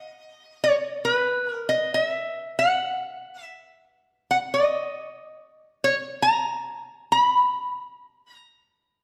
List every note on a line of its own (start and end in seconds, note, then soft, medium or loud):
0.00 0.63 D#5 medium
0.64 0.74 C#5 medium
1.05 1.51 B4 medium
1.51 1.70 A#4 medium
1.69 1.91 D#5 medium
1.94 2.60 E5 medium
2.59 3.44 F#5 medium
3.44 3.83 E5 medium
4.31 4.37 F#5 medium
4.54 5.86 D#5 medium
5.84 5.94 C#5 medium
6.22 6.82 A#5 medium
7.12 8.33 B5 medium
8.33 9.02 A#5 medium